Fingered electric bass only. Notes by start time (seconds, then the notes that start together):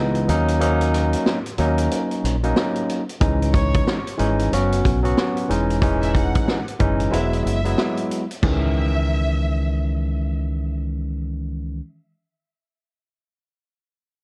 0.29 D#2
1.59 D#2
2.24 A#1
3.22 C#2
4.20 G#1
4.52 F#1
4.86 B1
5.50 E1
6.81 F#1
7.14 E1
7.46 F#1
8.43 C#2